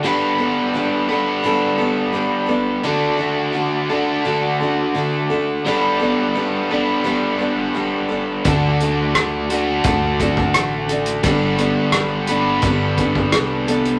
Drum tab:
HH |----------------|----------------|----------------|x-x-x-x-x-x-x-xx|
SD |----------------|----------------|----------------|----r-------r---|
BD |----------------|----------------|----------------|o-------o-oo----|

HH |x-x-x-x-x-x-x-xx|
SD |----r-------r---|
BD |o-------o-oo----|